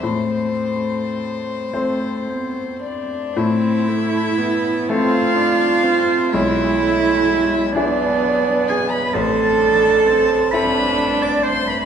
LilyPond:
<<
  \new Staff \with { instrumentName = "Violin" } { \time 6/8 \key a \minor \tempo 4. = 42 c''2~ c''8 d''8 | e''4. f''4. | e''4. d''4 gis''16 b''16 | a''4. b''8. d'''16 c'''16 b''16 | }
  \new Staff \with { instrumentName = "Cello" } { \time 6/8 \key a \minor a4. a8 b8 d'8 | e'4. f'4. | e'4. d'4 gis'16 b'16 | a'4. b'8. d''16 c''16 b'16 | }
  \new Staff \with { instrumentName = "Grand piano" } { \time 6/8 \key a \minor a,4. <a c' c''>4. | a,4. <a c' a'>4. | b,,4. <d' e' gis'>4. | a,,4. <c' e' a'>4. | }
  \new Staff \with { instrumentName = "Viola" } { \time 6/8 \key a \minor c'2. | c'8 a8 b8 c'8 d'8 c'8 | gis8 a8 gis8 b4. | c'8 d'8 c'8 d'4. | }
>>